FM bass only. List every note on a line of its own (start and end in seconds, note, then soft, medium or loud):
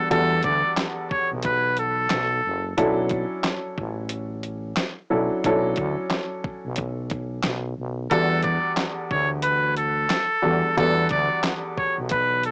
0.11 0.41 E2 loud
0.45 0.62 D2 loud
1.32 2.07 B1 loud
2.12 2.41 B1 medium
2.45 2.74 F#1 medium
2.78 3.25 B1 loud
3.78 4.74 A1 medium
5.12 5.29 B1 medium
5.45 5.74 B1 loud
5.78 5.95 D2 loud
6.65 7.41 B1 medium
7.45 7.74 B1 loud
7.78 8.08 B1 medium
8.11 8.59 E2 loud
9.11 10.07 D2 medium
10.45 10.62 E2 loud
10.78 11.07 E2 loud
11.11 11.29 D2 loud
11.98 12.51 B1 medium